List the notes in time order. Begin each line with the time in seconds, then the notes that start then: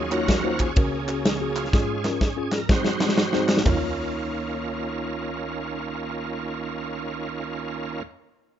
Already playing: D#2 D#3 F#3 C#4 F4 G#4
0.10 A#3 C#4 D#4 F4 F#4 A#4 C#5, clap, ride
0.28 kick, snare, ride
0.43 A#3 D#4 F4 F#4 C5
0.59 C#4 G#4, kick, clap, ride
0.76 C#2 C#3 A#3 C#4 F#4 A#4, kick, ride
1.07 C#4 F#4 G#4, clap, ride
1.25 snare, ride
1.40 C#4 F#4 G#4
1.56 C#4 F4 G#4, clap, ride
1.65 snare
1.72 G#2 G#3 C#4 F4 G#4, kick, snare
2.04 C#4 F4 A#4, snare, clap
2.21 kick, snare
2.37 C#4 F4 G#4
2.52 A#4, snare, clap
2.69 G#2 F#3 G#3 C4 D#4 F#4 C5, kick, snare
2.85 snare
3.00 G#3 C4 D#4 F#4 G#4, snare, clap
3.09 snare
3.18 snare
3.33 G#3 C4 D#4 F#4 C5, snare
3.49 snare, clap
3.57 snare
3.63 C#2 D#3 A#3 C#4 D#4 F4, kick, clap, floor tom, open hi-hat
3.67 A#3 F4 C#5